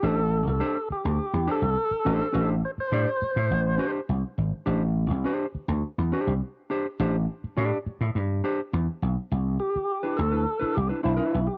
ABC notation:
X:1
M:4/4
L:1/16
Q:1/4=104
K:Am
V:1 name="Tonewheel organ"
A3 A3 G4 A6 | A2 c c8 z4 z | z16 | z16 |
z2 G4 A4 G2 E2 E G |]
V:2 name="Clean electric guitar"
[DGc] z3 [DGc] z4 z [DGc] z3 [DGc] z | [DGc] z3 [DGd] z4 z [DGc] z4 z | [DGc] z3 [DGc] z4 z [DGc] z3 [DGc] z | [DGc] z3 [DGd] z4 z [DGc] z4 z |
z4 z [DEB] z [DEB] z [DEB] z [DEB] [DEc] [DEB] z2 |]
V:3 name="Slap bass" clef=bass
A,,,3 C,, z3 D,, z E,, z C,, z2 A,,, z | A,,,2 z2 A,, z2 A,, A,,,2 z2 C,, z ^G,,, z | A,,,3 C,, z3 D,, z E,, z C,, z4 | A,,,2 z2 A,, z2 A,, G,,2 z2 E,, z B,,, z |
C,,2 z4 D,,2 z2 C,, z B,,, z B,,, z |]